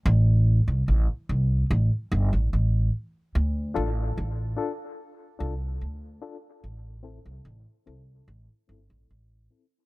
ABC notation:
X:1
M:4/4
L:1/16
Q:1/4=73
K:Aphr
V:1 name="Reed electric piano"
z16 | z2 [DFA]2 z2 [DFA]2 z2 [DFA]2 z2 [DFA]2 | z2 [CEA]2 z2 [CEA]2 z2 [CEA]2 z2 [CEA]2 |]
V:2 name="Upright bass" clef=bass
A,,,3 C,, A,,, z C,,2 A,,, z G,,, A,,, A,,,2 z2 | D,,2 A,,,2 A,,,2 z4 C,,2 D,,2 z2 | A,,,3 C,, A,,, z C,,2 A,,, z G,,, A,,, A,,,2 z2 |]